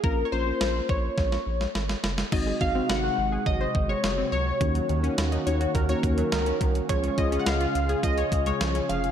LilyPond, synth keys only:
\new Staff \with { instrumentName = "Synth keys" } { \time 4/4 \key aes \mixolydian \tempo 4 = 105 <bes des' f' bes'>8 <bes des' f' bes'>16 <bes des' f' bes'>4. r4. r16 | <aes c' ees' ges'>8 <aes c' ees' ges'>16 <aes c' ees' ges'>4. r4. r16 | <bes des' ees' ges'>4~ <bes des' ees' ges'>16 r16 <bes des' ees' ges'>8 r16 <bes des' ees' ges'>4~ <bes des' ees' ges'>16 r8 | <aes des' f' aes'>8 <aes des' f' aes'>16 <aes des' f' aes'>4. r4. r16 | }